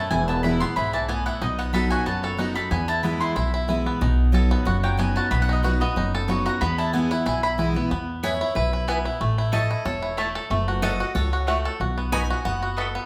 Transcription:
Already playing: five-string banjo A3 E4, mandolin A5
0.11 upright bass E1, steel-string acoustic guitar E2, five-string banjo E4, mandolin G#5
0.28 five-string banjo B3, mandolin A5
0.43 steel-string acoustic guitar E3 G#3 B3 E4, five-string banjo E4, mandolin B5
0.60 five-string banjo B3, steel-string acoustic guitar B3 E4, mandolin C6
0.76 upright bass B1, steel-string acoustic guitar G#2, five-string banjo E4, mandolin B5
0.93 five-string banjo E3, mandolin A5
1.09 steel-string acoustic guitar A2, five-string banjo B3, mandolin G#5
1.26 five-string banjo E4, mandolin F#5
1.41 upright bass B1, steel-string acoustic guitar B2, five-string banjo D#4, mandolin D#5
1.59 five-string banjo B3, mandolin F#5
1.73 steel-string acoustic guitar F#3 B3 D#4 F#4, five-string banjo A4, mandolin B5
1.91 five-string banjo F#4, mandolin G#5
2.06 upright bass F#1, steel-string acoustic guitar F#2, five-string banjo B3, mandolin A5
2.23 five-string banjo A4, mandolin C#5
2.37 steel-string acoustic guitar F#3 B3 D#4 F#4, five-string banjo D#4, mandolin F#5
2.55 steel-string acoustic guitar D#4 F#4, five-string banjo A4, mandolin B5
2.71 steel-string acoustic guitar E2, upright bass E2, five-string banjo B3, mandolin G#5
2.88 five-string banjo E4, mandolin A5
3.03 steel-string acoustic guitar E3 G#3 B3 E4, five-string banjo B3, mandolin B5
3.21 five-string banjo E4, mandolin C6
3.36 upright bass B1, steel-string acoustic guitar B2, five-string banjo E4, mandolin B5
3.54 five-string banjo E4
3.68 steel-string acoustic guitar E3 G#3 B3 E4, five-string banjo E4
3.86 five-string banjo B3
4.01 upright bass B1, steel-string acoustic guitar B2, five-string banjo D#4
4.32 steel-string acoustic guitar F#3 B3 D#4 F#4, five-string banjo A4
4.51 five-string banjo B3
4.65 upright bass F#1, steel-string acoustic guitar F#2, five-string banjo F#4, mandolin F#5
4.83 five-string banjo F#3, mandolin G5
4.97 steel-string acoustic guitar F#3 B3 D#4 F#4, five-string banjo B3, mandolin G#5
5.16 five-string banjo F#4, mandolin A5
5.31 upright bass B1, steel-string acoustic guitar B2, five-string banjo B3, mandolin B5
5.42 mandolin F#5
5.49 five-string banjo D#4, mandolin D#5
5.63 steel-string acoustic guitar F#3 B3 D#4 F#4, five-string banjo F#4, mandolin B4
5.80 five-string banjo B3, steel-string acoustic guitar D#4 F#4, mandolin D#5
5.96 upright bass F#1, steel-string acoustic guitar F#2, five-string banjo D#4
6.15 five-string banjo A4
6.28 steel-string acoustic guitar F#3 B3 D#4 F#4, five-string banjo B3, mandolin C#6
6.46 five-string banjo F#4, mandolin A#5
6.61 upright bass E2, steel-string acoustic guitar E2, five-string banjo B3, mandolin B5
6.78 five-string banjo E4, mandolin A5
6.93 steel-string acoustic guitar E3 G#3 B3 E4, five-string banjo B3, mandolin G#5
7.10 steel-string acoustic guitar B3 E4, five-string banjo E4, mandolin F#5
7.26 upright bass B1, steel-string acoustic guitar B2, five-string banjo E4, mandolin G#5
7.43 five-string banjo E4, mandolin B5
7.58 steel-string acoustic guitar E3 G#3 B3 E4, five-string banjo E4
7.74 five-string banjo B3, steel-string acoustic guitar B3 E4
7.91 upright bass E2, five-string banjo B3
8.23 mandolin B3 E4 B4 G#5, five-string banjo E4, steel-string acoustic guitar C#5
8.41 five-string banjo E4
8.55 upright bass B1, five-string banjo E4, steel-string acoustic guitar B4
8.73 five-string banjo E4
8.88 mandolin B3 E4 B4 G#5, five-string banjo B3
9.05 five-string banjo E4
9.21 upright bass A1, five-string banjo A3
9.38 five-string banjo E4
9.52 mandolin A3 E4 C#5 A5, five-string banjo A4, steel-string acoustic guitar D#5
9.71 five-string banjo E4
9.85 upright bass E1, five-string banjo A4, steel-string acoustic guitar C#5
10.02 five-string banjo E4
10.17 mandolin A3 E4 C#5 A5, five-string banjo A3
10.35 five-string banjo A4
10.50 upright bass F#1, five-string banjo A3
10.68 five-string banjo F#4
10.82 mandolin A3 F#4 C#5 F#5, five-string banjo A4, steel-string acoustic guitar D#5
11.00 five-string banjo F#4
11.15 upright bass C#2, five-string banjo A4, steel-string acoustic guitar C#5
11.33 five-string banjo F#4
11.47 mandolin A3 F#4 C#5 F#5, five-string banjo A3
11.65 five-string banjo A4
11.80 upright bass B1, five-string banjo F#4
11.98 five-string banjo B3
12.12 mandolin B3 F#4 D#5 B5, five-string banjo D#4, steel-string acoustic guitar G#5
12.30 five-string banjo F#4
12.45 upright bass F#1, five-string banjo B3, steel-string acoustic guitar F#5
12.63 five-string banjo F#4
12.77 mandolin B3 F#4 D#5 B5, five-string banjo A4
12.95 five-string banjo B3

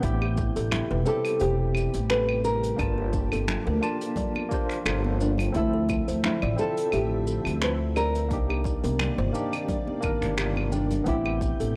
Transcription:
0.00 upright bass A1, string machine C3 G3 G4, tine electric piano B3 C4 E4, nylon-string guitar E4, kick, closed hi-hat, cabasa
0.05 tine electric piano G4
0.22 kalimba G4, claves
0.37 kick, high bongo, cabasa
0.56 upright bass A1, kalimba A4, closed hi-hat, cabasa
0.71 nylon-string guitar E4, finger snap, closed hi-hat, low conga, cabasa, claves
0.91 upright bass E1, kalimba B4
1.05 tine electric piano C4 E4 G4, nylon-string guitar A4, cabasa
1.25 closed hi-hat, cabasa, claves
1.40 upright bass E1, nylon-string guitar G4, kalimba C5, closed hi-hat, cabasa
1.75 kalimba G4, cabasa, claves
1.94 upright bass A1, closed hi-hat, cabasa
2.10 kalimba A4, nylon-string guitar B4, finger snap, closed hi-hat, cabasa
2.29 claves
2.44 nylon-string guitar A#4, kalimba B4, cabasa
2.63 closed hi-hat, cabasa
2.76 upright bass G1, string machine F3 A#3, tine electric piano A#3 D4 F4, kick, closed hi-hat, cabasa, claves
2.81 tine electric piano A5
2.98 kalimba G4
3.13 kick, high bongo, cabasa
3.32 upright bass G1, kalimba A4, closed hi-hat, high conga, cabasa, claves
3.48 finger snap, closed hi-hat, low conga, cabasa
3.67 upright bass D2, kalimba A#4
3.81 tine electric piano A#3 D4 F4 A5, cabasa, claves
4.01 closed hi-hat, cabasa
4.16 kalimba D5, kick, closed hi-hat, low conga, cabasa
4.35 high bongo, high conga, claves
4.49 tine electric piano A#3 D4 F4, kalimba G4, kick, cabasa
4.54 tine electric piano C5
4.69 finger snap, closed hi-hat, cabasa
4.85 upright bass G1, kalimba A4, finger snap, closed hi-hat, cabasa, claves
5.05 high conga
5.20 nylon-string guitar D4, kalimba A#4, cabasa
5.38 closed hi-hat, low conga, cabasa, claves
5.52 upright bass D2, string machine D3 C4 E5, tine electric piano F3 C4 E4, nylon-string guitar E4, kick, closed hi-hat, cabasa
5.57 tine electric piano A4
5.74 kalimba A4
5.89 kick, high bongo, cabasa, claves
6.08 upright bass D2, kalimba C5, closed hi-hat, cabasa
6.24 nylon-string guitar E4, finger snap, closed hi-hat, low conga, cabasa
6.42 upright bass A1, kalimba D5, claves
6.56 tine electric piano C4 E4 F4, nylon-string guitar A4, cabasa
6.61 tine electric piano A5
6.77 closed hi-hat, cabasa
6.92 upright bass A1, nylon-string guitar G4, kalimba E5, closed hi-hat, cabasa, claves
7.27 kalimba A4, cabasa
7.45 upright bass D2, closed hi-hat, cabasa, claves
7.62 nylon-string guitar B4, kalimba C5, finger snap, closed hi-hat, cabasa
7.96 nylon-string guitar A#4, kalimba D5, cabasa, claves
8.15 closed hi-hat, cabasa
8.29 upright bass C2, string machine C3 D#3 A#3 D5, tine electric piano A#3 D4 D#4, kick, closed hi-hat, cabasa
8.33 tine electric piano G4
8.50 kalimba G4, claves
8.64 kick, high bongo, cabasa
8.84 upright bass C2, kalimba A#4, closed hi-hat, high conga, cabasa
8.99 finger snap, closed hi-hat, low conga, cabasa, claves
9.18 upright bass G1, kalimba C5
9.33 tine electric piano A#3 D4 D#4 G4, cabasa
9.53 closed hi-hat, cabasa, claves
9.68 kalimba D5, kick, closed hi-hat, low conga, cabasa
9.87 high bongo, high conga
10.01 upright bass G1, tine electric piano D#3 A#3 D4, kalimba A#4, kick, cabasa, claves
10.05 tine electric piano A#4
10.22 upright bass G1, finger snap, closed hi-hat, cabasa
10.37 kalimba G4, finger snap, closed hi-hat, cabasa
10.56 high conga, claves
10.72 nylon-string guitar D4, kalimba G5, cabasa
10.90 closed hi-hat, low conga, cabasa
11.04 upright bass A1, tine electric piano B3 C4 E4, nylon-string guitar E4, string machine G4, synth texture G6, kick, closed hi-hat, cabasa
11.09 tine electric piano G4
11.25 kalimba G4, claves
11.41 kick, high bongo, cabasa
11.60 upright bass A1, kalimba A4, closed hi-hat, cabasa

